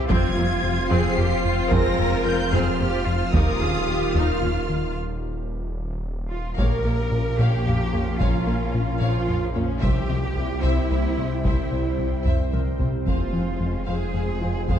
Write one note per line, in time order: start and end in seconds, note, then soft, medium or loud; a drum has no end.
0.00 0.11 C2 medium
0.00 3.34 C4 medium
0.00 0.10 E4 medium
0.00 1.14 G4 medium
0.00 3.34 C5 medium
0.09 3.35 F1 medium
0.09 0.26 F2 loud
0.09 0.19 F2 loud
0.09 4.96 F3 medium
0.09 0.35 C4 loud
0.09 3.18 C4 loud
0.09 0.89 F4 loud
0.09 4.96 F4 medium
0.09 3.30 F4 loud
0.09 3.30 F4 medium
0.09 3.18 F4 loud
0.09 3.30 C5 medium
0.09 0.87 G#6 loud
0.09 taiko loud
0.37 0.53 F2 medium
0.37 0.46 F2 medium
0.37 0.45 A#3 medium
0.64 0.80 F2 medium
0.90 0.99 F2 loud
0.90 1.07 F2 loud
0.90 1.16 C4 loud
0.90 1.18 G#4 loud
0.90 1.72 C7 loud
1.17 1.25 F2 medium
1.17 1.34 F2 medium
1.17 1.26 A#3 medium
1.17 1.45 G4 loud
1.45 1.61 F2 medium
1.45 1.72 F4 loud
1.72 1.80 F2 loud
1.72 1.88 F2 loud
1.72 3.30 G#3 medium
1.72 1.97 C4 loud
1.72 3.30 G#4 medium
1.72 2.53 A#4 loud
1.72 2.25 A#6 loud
1.72 taiko loud
1.99 2.15 F2 medium
1.99 2.07 F2 medium
1.99 2.08 A#3 medium
2.25 2.42 F2 medium
2.25 3.84 A#4 medium
2.25 2.52 G6 loud
2.53 2.69 F2 loud
2.53 2.61 F2 loud
2.53 2.78 C4 loud
2.53 2.80 G#4 medium
2.53 3.34 F6 loud
2.79 2.96 F2 medium
2.79 2.88 F2 medium
2.79 2.89 A#3 medium
2.79 3.06 G4 loud
3.06 3.23 F2 medium
3.06 3.34 F4 medium
3.34 6.58 D#1 medium
3.34 3.42 D#2 loud
3.34 3.50 D#2 loud
3.34 4.94 A#3 medium
3.34 4.96 D#4 medium
3.34 3.59 D#4 loud
3.34 4.93 F4 medium
3.34 4.93 F4 loud
3.34 4.94 F4 medium
3.34 4.92 G4 medium
3.34 4.96 A#4 medium
3.34 3.61 A#4 medium
3.34 4.93 F5 medium
3.34 4.15 D#6 loud
3.34 taiko loud
3.61 3.77 D#2 medium
3.61 3.69 D#2 medium
3.61 3.70 C#4 medium
3.61 3.88 G#4 medium
3.88 4.04 D#2 medium
3.88 4.15 G4 medium
4.15 4.31 D#2 loud
4.15 4.23 D#2 medium
4.15 4.40 D#4 medium
4.15 4.96 F4 medium
4.15 4.96 F6 loud
4.42 4.50 D#2 medium
4.42 4.58 D#2 medium
4.42 4.50 C#4 medium
4.69 4.86 D#2 medium
6.31 6.56 F4 medium
6.58 6.66 A#1 medium
6.58 9.84 A#1 medium
6.58 6.74 A#2 medium
6.58 9.79 F3 medium
6.58 9.79 C#4 medium
6.58 9.79 F4 medium
6.58 8.17 G4 medium
6.58 7.38 A#4 medium
6.58 9.79 A#4 medium
6.58 6.83 C#5 medium
6.58 6.83 F5 medium
6.58 9.79 F5 medium
6.58 taiko medium
6.84 6.93 A#1 medium
6.84 7.01 A#3 medium
6.84 6.93 C#5 soft
6.84 6.92 F5 soft
7.12 7.28 A#2 medium
7.12 7.22 C#4 medium
7.12 7.23 F4 medium
7.39 7.48 A#1 medium
7.39 7.55 A#2 medium
7.39 8.17 A#3 medium
7.39 8.21 G4 loud
7.39 7.65 C#5 medium
7.39 7.65 F5 medium
7.66 7.75 A#1 soft
7.66 7.83 A#2 medium
7.66 7.75 C#5 medium
7.66 7.75 F5 medium
7.66 taiko low-mid medium
7.93 8.02 A#1 soft
7.93 8.10 A#3 medium
7.93 8.04 C#4 medium
7.93 8.04 F4 medium
7.93 8.01 C#5 medium
7.93 taiko low-mid soft
8.20 8.29 A#1 medium
8.20 8.37 A#2 medium
8.20 9.00 C#4 medium
8.20 9.00 F4 medium
8.20 8.46 C#5 medium
8.20 8.45 F5 medium
8.20 taiko medium
8.47 8.56 A#1 medium
8.47 8.63 A#3 medium
8.47 10.06 A#4 soft
8.47 8.55 C#5 soft
8.47 8.55 F5 medium
8.75 8.91 A#2 medium
8.75 8.84 C#4 medium
8.75 8.84 F4 medium
9.00 9.10 A#1 medium
9.00 9.18 A#2 medium
9.00 9.81 F3 medium
9.00 9.54 F4 medium
9.00 9.26 C#5 medium
9.00 9.26 F5 medium
9.28 9.37 A#1 soft
9.28 9.45 A#2 medium
9.28 9.36 C#5 medium
9.28 9.36 F5 medium
9.28 taiko low-mid medium
9.54 9.63 A#1 medium
9.54 9.72 A#3 medium
9.54 9.82 C#4 medium
9.54 9.65 C#4 medium
9.54 9.66 F4 medium
9.54 9.63 C#5 medium
9.54 taiko low-mid medium
9.81 9.99 C2 medium
9.81 9.91 C2 medium
9.81 13.08 C2 medium
9.81 10.10 E3 medium
9.81 13.08 G3 medium
9.81 14.79 C4 medium
9.81 13.07 E4 medium
9.81 10.64 G4 medium
9.81 10.07 C5 medium
9.81 14.79 C5 medium
9.81 10.07 E5 medium
9.81 12.83 G5 medium
9.81 taiko loud
10.08 10.18 C2 medium
10.08 10.26 C3 medium
10.08 10.37 G#3 medium
10.08 10.17 C5 medium
10.08 10.16 E5 medium
10.37 10.53 C2 medium
10.37 11.95 G3 soft
10.37 10.64 A#3 medium
10.37 10.46 C4 medium
10.37 10.47 E4 medium
10.37 11.95 G4 medium
10.63 10.80 C2 medium
10.63 10.72 C2 medium
10.63 10.91 C4 medium
10.63 11.44 E4 medium
10.63 10.89 C5 medium
10.63 10.88 E5 medium
10.90 11.07 C2 medium
10.90 10.99 C2 medium
10.90 11.17 A#3 medium
10.90 10.98 C5 medium
10.90 10.98 E5 medium
11.17 11.26 C2 soft
11.17 11.34 C3 medium
11.17 11.45 G#3 medium
11.17 11.27 C4 medium
11.17 11.27 E4 medium
11.17 11.26 C5 medium
11.45 11.61 C2 medium
11.45 11.53 C2 medium
11.45 12.66 G3 medium
11.45 12.24 E4 medium
11.45 11.70 C5 medium
11.45 13.03 C5 medium
11.45 11.70 E5 medium
11.45 taiko medium
11.72 11.82 C2 soft
11.72 11.88 C3 medium
11.72 11.80 C5 soft
11.72 11.81 E5 soft
11.98 12.15 C2 medium
11.98 12.09 C4 medium
11.98 12.09 E4 medium
12.25 12.42 C2 medium
12.25 12.35 C2 medium
12.25 12.51 C5 medium
12.25 12.51 E5 medium
12.25 taiko low-mid medium
12.52 12.69 C2 medium
12.52 12.62 C2 soft
12.52 14.11 A#4 medium
12.52 12.60 C5 soft
12.52 12.60 E5 soft
12.52 taiko high medium
12.79 12.88 C2 soft
12.79 12.96 C3 medium
12.79 12.90 C4 medium
12.79 12.90 E4 medium
12.79 12.87 C5 soft
12.79 taiko low medium
13.06 14.79 F1 medium
13.06 13.23 F2 medium
13.06 13.15 F2 medium
13.06 14.79 G#3 medium
13.06 13.32 A#3 medium
13.06 14.79 F4 medium
13.06 13.84 F4 medium
13.06 13.32 C5 medium
13.06 13.32 F5 medium
13.06 14.79 G#5 medium
13.06 taiko medium
13.33 13.43 F2 soft
13.33 13.50 F3 medium
13.33 13.61 G#3 soft
13.33 13.42 C5 soft
13.33 13.41 F5 soft
13.60 13.77 F2 medium
13.60 13.71 G#3 medium
13.60 13.88 C#4 medium
13.60 13.70 F4 medium
13.86 14.04 F2 medium
13.86 13.96 F2 medium
13.86 14.70 C4 medium
13.86 14.68 G#4 medium
13.86 14.12 C5 medium
13.86 14.12 F5 medium
14.14 14.31 F2 medium
14.14 14.23 F2 soft
14.14 14.22 C5 soft
14.14 14.22 F5 medium
14.41 14.50 F2 soft
14.41 14.58 F3 medium
14.41 14.52 G#3 medium
14.41 14.52 F4 medium
14.41 14.50 C5 medium
14.68 14.79 F2 medium
14.68 14.77 F2 medium
14.68 14.79 G#3 medium
14.68 14.79 G#4 medium
14.68 14.79 C5 medium
14.68 14.79 F5 medium
14.68 taiko medium